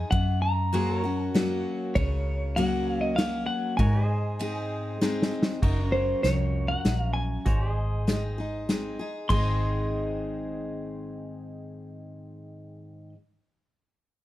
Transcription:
Already playing: pedal steel guitar D#4 G#4 C5, steel-string acoustic guitar D#4 G#4, clean electric guitar G#5
0.11 steel-string acoustic guitar F#2, fingered electric bass F#2, clean electric guitar F#5, kick, ride
0.42 clean electric guitar A#5
0.73 steel-string acoustic guitar F#3 A#3 C#4 F#4, pedal steel guitar F#4 G#4 C5, ride
0.96 pedal steel guitar A#4 C#5
1.03 steel-string acoustic guitar C#4 F#4
1.23 clean electric guitar G#5
1.34 steel-string acoustic guitar F#3 A#3 C#4 F#4, snare, ride
1.95 fingered electric bass C#2, steel-string acoustic guitar C#3, clean electric guitar C#5, kick, ride
2.56 steel-string acoustic guitar F#3 A#3 C#4 F#4, clean electric guitar F#5, ride
2.91 clean electric guitar F5
3.01 clean electric guitar D#5
3.16 steel-string acoustic guitar F#3 A#3 C#4 F#4, clean electric guitar F5, snare, ride
3.46 clean electric guitar F#5
3.77 steel-string acoustic guitar G#2, fingered electric bass G#2, pedal steel guitar F#4 A#4, clean electric guitar G#5, kick, ride
3.81 pedal steel guitar C#5
4.05 pedal steel guitar G#4 C5 D#5
4.39 steel-string acoustic guitar G#3 C4 D#4 G#4, ride
5.01 steel-string acoustic guitar G#3 C4 D#4 G#4, snare
5.22 snare
5.43 snare
5.62 fingered electric bass F#1, steel-string acoustic guitar F#2, pedal steel guitar D#4 F#4 A#4, kick, crash
5.89 pedal steel guitar C#4, clean electric guitar C5
6.23 fingered electric bass C2, steel-string acoustic guitar F2, clean electric guitar C#5, snare, closed hi-hat
6.68 clean electric guitar F#5
6.85 fingered electric bass A#1, steel-string acoustic guitar F#2, snare, closed hi-hat
7.00 clean electric guitar F5
7.14 clean electric guitar G#5
7.46 fingered electric bass G#1, steel-string acoustic guitar G#2, pedal steel guitar F#4 C5 C#5, kick, closed hi-hat
7.71 pedal steel guitar G#4 D#5
8.07 steel-string acoustic guitar G#3 C4 D#4 G#4, snare, closed hi-hat
8.38 steel-string acoustic guitar D#4 G#4
8.69 steel-string acoustic guitar G#3 C4 D#4 G#4, snare, closed hi-hat
8.99 steel-string acoustic guitar D#4 G#4
9.29 fingered electric bass G#1, steel-string acoustic guitar G#2 D#3 G#3 C4 D#4 G#4, pedal steel guitar G#4 C5 D#5, clean electric guitar C6, kick, crash

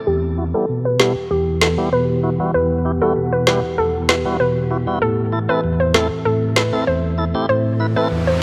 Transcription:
0.07 ambient pad E2 E3 B3 G4 F#5, tonewheel organ E2, synth pluck G4
0.38 tonewheel organ E4 F#4
0.54 tonewheel organ G3 B3 E4 G4, synth pluck A4
0.69 tonewheel organ B2
0.85 synth pluck B4
0.99 tonewheel organ G3 B3 E4 A4, synth pluck G4, snare
1.31 tonewheel organ E2, synth pluck G4
1.61 tonewheel organ E4 F#4, synth pluck A4, snare
1.78 tonewheel organ G3 B3 E4 G4
1.92 tonewheel organ B2, synth pluck B4
2.23 tonewheel organ E4 F#4
2.39 tonewheel organ G3 B3 E4 F#4
2.54 tonewheel organ E2, synth pluck B4
2.85 tonewheel organ E4 G4
3.01 tonewheel organ G3 B3 E4 F#4, synth pluck A4
3.16 tonewheel organ B2
3.33 synth pluck B4
3.47 tonewheel organ G3 B3 E4 G4, synth pluck B4, snare
3.78 tonewheel organ E2, synth pluck A4
4.09 tonewheel organ E4 F#4, synth pluck B4, snare
4.25 tonewheel organ G3 B3 E4 F#4
4.40 tonewheel organ B2, synth pluck B4
4.70 tonewheel organ E4 F#4
4.87 tonewheel organ G3 B3 E4 F#4
5.02 tonewheel organ A2, ambient pad A2 C4 A4 E5, synth pluck A4
5.32 tonewheel organ E4 A4
5.49 tonewheel organ A3 C4 E4 A4, synth pluck B4
5.64 tonewheel organ E2
5.80 synth pluck C5
5.94 tonewheel organ A3 C4 E4 A4, synth pluck A4, snare
6.25 tonewheel organ A2, synth pluck A4
6.56 tonewheel organ E4 A4, synth pluck B4, snare
6.73 tonewheel organ A3 C4 E4 A4
6.87 tonewheel organ E2, synth pluck C5
7.18 tonewheel organ E4 A4
7.34 tonewheel organ A3 C4 E4 G4
7.49 tonewheel organ A2, synth pluck C5, ambient pad D5, riser
7.80 tonewheel organ E4 B4
7.96 tonewheel organ A3 C4 E4 A4, synth pluck B4
8.11 tonewheel organ E2
8.27 synth pluck C5

